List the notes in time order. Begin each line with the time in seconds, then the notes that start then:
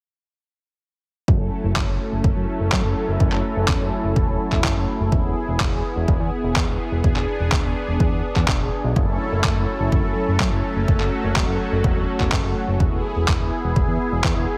1.28 F#1 F#3 A3 C#4 E4 A4, kick
1.40 F#1
1.64 F#1
1.76 F#1, kick, clap
1.88 F#1
2.12 F#1
2.24 F#1, kick
2.36 F#2
2.60 F#1
2.72 F#2, kick, clap
2.84 F#1
3.08 F#1
3.20 F#1, kick
3.32 F#1, clap
3.56 F#1
3.68 E1, kick, clap
3.80 F#1
4.04 F#1
4.16 E1, kick
4.28 E1
4.52 E1, kick, clap
4.64 F#1, kick, clap
4.76 F#1
5.00 F#1
5.12 E1 B3 G#4, kick
5.24 E1
5.48 E1
5.60 E1, kick, clap
5.72 E1
5.96 E1
6.08 E1, kick
6.20 E2
6.44 E1
6.56 E2, kick, clap
6.68 E1
6.92 E1
7.04 E1 D4, kick
7.16 E1, clap
7.40 E1
7.52 D1, kick, clap
7.64 E1
7.88 E1
8.00 E2, kick
8.12 E2
8.36 E2, kick, clap
8.48 E1, kick, clap
8.60 E1
8.84 B1
8.96 F#1 F#3 A3 C#4 E4 A4, kick
9.08 F#1
9.32 F#1
9.44 F#1, kick, clap
9.56 F#1
9.80 F#1
9.92 F#1, kick
10.04 F#2
10.28 F#1
10.40 F#2, kick, clap
10.52 F#1
10.76 F#1
10.88 F#1 F#4, kick
11.00 F#1, clap
11.24 F#1
11.36 E1, kick, clap
11.48 F#1
11.72 F#1
11.84 E1, kick
11.96 E1
12.20 E1, kick, clap
12.32 F#1, kick, clap
12.44 F#1
12.68 F#1
12.80 E1 B3 E4 G#4, kick
12.92 E1
13.16 E1
13.28 E1, kick, clap
13.40 E1
13.64 E1
13.76 E1, kick
13.88 E2
14.12 E1
14.24 E2, kick, clap
14.36 E1